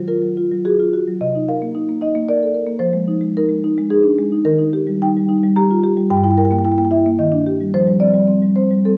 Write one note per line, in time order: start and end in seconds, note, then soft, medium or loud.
0.00 1.16 D#3 medium
0.00 0.18 F#3 soft
0.08 0.31 F4 soft
0.08 0.63 A#4 medium
0.22 0.45 F#3 soft
0.37 0.60 F4 soft
0.52 0.74 F#3 medium
0.65 0.87 F#4 medium
0.65 1.18 G#4 medium
0.80 0.93 F4 soft
0.94 1.15 F#4 soft
1.08 1.21 F#3 soft
1.21 2.78 C3 medium
1.21 1.47 D#5 medium
1.35 1.56 D#4 soft
1.48 1.69 A#4 medium
1.48 1.99 F5 medium
1.62 1.83 A#3 soft
1.75 1.96 D#4 soft
1.89 2.10 A#3 soft
2.01 2.23 D#4 soft
2.01 2.27 D#5 medium
2.15 2.36 A#3 medium
2.29 2.50 A#4 medium
2.29 2.80 D5 medium
2.43 2.56 A4 soft
2.54 2.76 A#4 medium
2.67 2.81 A#3 soft
2.79 4.40 F3 medium
2.79 3.33 C5 medium
2.93 3.16 G#3 medium
3.08 3.30 D#4 medium
3.21 3.44 G#3 medium
3.37 3.59 D#4 soft
3.37 3.89 A#4 medium
3.49 3.71 G#3 soft
3.64 3.86 D#4 medium
3.78 3.99 G#3 medium
3.91 4.12 D#4 medium
3.91 4.43 G#4 medium
4.04 4.17 D4 soft
4.19 4.40 G#3 medium
4.32 4.46 D#4 medium
4.45 6.05 D#3 medium
4.45 4.98 A#4 loud
4.59 4.81 D#4 medium
4.73 4.95 G4 medium
4.87 5.08 G3 medium
5.02 5.23 D#4 medium
5.02 5.54 G5 medium
5.17 5.37 G3 soft
5.29 5.50 D#4 medium
5.43 5.64 G3 medium
5.56 5.78 G4 medium
5.56 6.08 A#5 medium
5.71 5.83 F4 medium
5.83 6.05 G4 medium
5.97 6.10 G3 medium
6.10 7.17 G2 medium
6.10 6.17 G5 medium
6.17 6.24 G5 medium
6.24 6.45 E4 soft
6.24 6.31 G5 medium
6.31 6.38 G5 medium
6.37 6.59 A#4 medium
6.37 6.45 G5 medium
6.45 6.52 G5 medium
6.51 6.73 A#3 medium
6.51 6.58 G5 medium
6.58 6.65 G5 medium
6.64 6.86 E4 medium
6.64 6.72 G5 medium
6.72 6.78 G5 medium
6.78 7.00 A#3 soft
6.78 6.85 G5 medium
6.85 6.89 G5 medium
6.91 7.13 E4 medium
6.91 7.18 E5 medium
7.06 7.20 A#3 medium
7.19 7.73 D#3 medium
7.19 7.72 D#5 medium
7.32 7.55 D4 medium
7.47 7.69 G4 medium
7.61 7.75 G3 medium
7.74 8.97 F3 medium
7.74 8.01 C5 medium
7.87 8.10 G3 soft
8.00 8.23 C4 medium
8.00 8.55 D5 medium
8.14 8.37 G3 medium
8.28 8.51 C4 medium
8.42 8.66 G3 soft
8.56 8.80 C4 soft
8.56 8.84 C5 medium
8.71 8.95 G3 medium
8.85 8.97 C4 soft
8.85 8.97 A4 medium